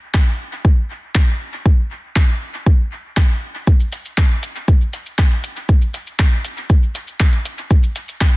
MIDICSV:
0, 0, Header, 1, 2, 480
1, 0, Start_track
1, 0, Tempo, 504202
1, 1577, Time_signature, 4, 2, 24, 8
1, 7967, End_track
2, 0, Start_track
2, 0, Title_t, "Drums"
2, 136, Note_on_c, 9, 36, 118
2, 136, Note_on_c, 9, 39, 75
2, 231, Note_off_c, 9, 36, 0
2, 231, Note_off_c, 9, 39, 0
2, 616, Note_on_c, 9, 36, 117
2, 711, Note_off_c, 9, 36, 0
2, 1096, Note_on_c, 9, 36, 127
2, 1097, Note_on_c, 9, 39, 71
2, 1191, Note_off_c, 9, 36, 0
2, 1192, Note_off_c, 9, 39, 0
2, 1576, Note_on_c, 9, 36, 125
2, 1672, Note_off_c, 9, 36, 0
2, 2056, Note_on_c, 9, 36, 115
2, 2057, Note_on_c, 9, 39, 77
2, 2152, Note_off_c, 9, 36, 0
2, 2152, Note_off_c, 9, 39, 0
2, 2537, Note_on_c, 9, 36, 120
2, 2632, Note_off_c, 9, 36, 0
2, 3017, Note_on_c, 9, 36, 117
2, 3017, Note_on_c, 9, 39, 69
2, 3112, Note_off_c, 9, 36, 0
2, 3112, Note_off_c, 9, 39, 0
2, 3497, Note_on_c, 9, 36, 118
2, 3497, Note_on_c, 9, 82, 37
2, 3592, Note_off_c, 9, 36, 0
2, 3592, Note_off_c, 9, 82, 0
2, 3618, Note_on_c, 9, 82, 26
2, 3713, Note_off_c, 9, 82, 0
2, 3737, Note_on_c, 9, 42, 85
2, 3737, Note_on_c, 9, 82, 66
2, 3832, Note_off_c, 9, 42, 0
2, 3832, Note_off_c, 9, 82, 0
2, 3858, Note_on_c, 9, 82, 30
2, 3953, Note_off_c, 9, 82, 0
2, 3977, Note_on_c, 9, 36, 112
2, 3977, Note_on_c, 9, 39, 76
2, 3977, Note_on_c, 9, 82, 38
2, 4072, Note_off_c, 9, 36, 0
2, 4072, Note_off_c, 9, 39, 0
2, 4072, Note_off_c, 9, 82, 0
2, 4217, Note_on_c, 9, 42, 77
2, 4217, Note_on_c, 9, 82, 70
2, 4312, Note_off_c, 9, 42, 0
2, 4312, Note_off_c, 9, 82, 0
2, 4338, Note_on_c, 9, 82, 29
2, 4433, Note_off_c, 9, 82, 0
2, 4457, Note_on_c, 9, 36, 111
2, 4457, Note_on_c, 9, 82, 37
2, 4552, Note_off_c, 9, 36, 0
2, 4552, Note_off_c, 9, 82, 0
2, 4697, Note_on_c, 9, 42, 85
2, 4697, Note_on_c, 9, 82, 67
2, 4792, Note_off_c, 9, 42, 0
2, 4792, Note_off_c, 9, 82, 0
2, 4818, Note_on_c, 9, 82, 28
2, 4913, Note_off_c, 9, 82, 0
2, 4937, Note_on_c, 9, 36, 120
2, 4937, Note_on_c, 9, 39, 70
2, 4937, Note_on_c, 9, 82, 37
2, 5032, Note_off_c, 9, 36, 0
2, 5032, Note_off_c, 9, 39, 0
2, 5032, Note_off_c, 9, 82, 0
2, 5058, Note_on_c, 9, 42, 34
2, 5058, Note_on_c, 9, 82, 28
2, 5153, Note_off_c, 9, 42, 0
2, 5153, Note_off_c, 9, 82, 0
2, 5177, Note_on_c, 9, 42, 70
2, 5177, Note_on_c, 9, 82, 64
2, 5272, Note_off_c, 9, 42, 0
2, 5272, Note_off_c, 9, 82, 0
2, 5298, Note_on_c, 9, 82, 30
2, 5393, Note_off_c, 9, 82, 0
2, 5416, Note_on_c, 9, 36, 119
2, 5417, Note_on_c, 9, 82, 35
2, 5512, Note_off_c, 9, 36, 0
2, 5512, Note_off_c, 9, 82, 0
2, 5537, Note_on_c, 9, 82, 26
2, 5632, Note_off_c, 9, 82, 0
2, 5656, Note_on_c, 9, 42, 75
2, 5656, Note_on_c, 9, 82, 66
2, 5752, Note_off_c, 9, 42, 0
2, 5752, Note_off_c, 9, 82, 0
2, 5777, Note_on_c, 9, 82, 28
2, 5873, Note_off_c, 9, 82, 0
2, 5896, Note_on_c, 9, 36, 112
2, 5896, Note_on_c, 9, 39, 79
2, 5896, Note_on_c, 9, 82, 39
2, 5992, Note_off_c, 9, 36, 0
2, 5992, Note_off_c, 9, 39, 0
2, 5992, Note_off_c, 9, 82, 0
2, 6136, Note_on_c, 9, 42, 71
2, 6136, Note_on_c, 9, 82, 66
2, 6231, Note_off_c, 9, 42, 0
2, 6231, Note_off_c, 9, 82, 0
2, 6258, Note_on_c, 9, 82, 27
2, 6353, Note_off_c, 9, 82, 0
2, 6376, Note_on_c, 9, 36, 108
2, 6377, Note_on_c, 9, 82, 38
2, 6472, Note_off_c, 9, 36, 0
2, 6472, Note_off_c, 9, 82, 0
2, 6617, Note_on_c, 9, 42, 78
2, 6617, Note_on_c, 9, 82, 65
2, 6712, Note_off_c, 9, 42, 0
2, 6712, Note_off_c, 9, 82, 0
2, 6737, Note_on_c, 9, 82, 27
2, 6832, Note_off_c, 9, 82, 0
2, 6856, Note_on_c, 9, 36, 112
2, 6856, Note_on_c, 9, 39, 70
2, 6856, Note_on_c, 9, 82, 34
2, 6951, Note_off_c, 9, 36, 0
2, 6951, Note_off_c, 9, 39, 0
2, 6951, Note_off_c, 9, 82, 0
2, 6977, Note_on_c, 9, 42, 33
2, 6977, Note_on_c, 9, 82, 28
2, 7072, Note_off_c, 9, 42, 0
2, 7072, Note_off_c, 9, 82, 0
2, 7096, Note_on_c, 9, 42, 67
2, 7096, Note_on_c, 9, 82, 65
2, 7192, Note_off_c, 9, 42, 0
2, 7192, Note_off_c, 9, 82, 0
2, 7217, Note_on_c, 9, 82, 29
2, 7312, Note_off_c, 9, 82, 0
2, 7336, Note_on_c, 9, 36, 112
2, 7336, Note_on_c, 9, 82, 38
2, 7431, Note_off_c, 9, 36, 0
2, 7431, Note_off_c, 9, 82, 0
2, 7457, Note_on_c, 9, 82, 27
2, 7552, Note_off_c, 9, 82, 0
2, 7576, Note_on_c, 9, 42, 80
2, 7576, Note_on_c, 9, 82, 67
2, 7671, Note_off_c, 9, 42, 0
2, 7671, Note_off_c, 9, 82, 0
2, 7697, Note_on_c, 9, 82, 30
2, 7792, Note_off_c, 9, 82, 0
2, 7816, Note_on_c, 9, 36, 107
2, 7816, Note_on_c, 9, 39, 86
2, 7816, Note_on_c, 9, 82, 41
2, 7911, Note_off_c, 9, 36, 0
2, 7911, Note_off_c, 9, 39, 0
2, 7911, Note_off_c, 9, 82, 0
2, 7967, End_track
0, 0, End_of_file